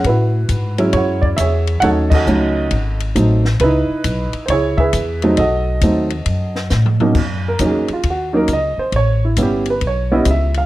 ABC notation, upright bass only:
X:1
M:4/4
L:1/8
Q:"Swing" 1/4=135
K:Bmix
V:1 name="Upright bass" clef=bass
A,,2 G,,2 F,,2 E,,2 | D,,2 C,,2 G,,,2 A,,,2 | C,, z B,,, z C,,2 E,,2 | B,,,2 D,,2 F,,2 A,,2 |
[K:F#mix] F,,2 E,, z D,,2 C,, z | =A,,,2 =G,,,2 B,,,2 C,,2 |]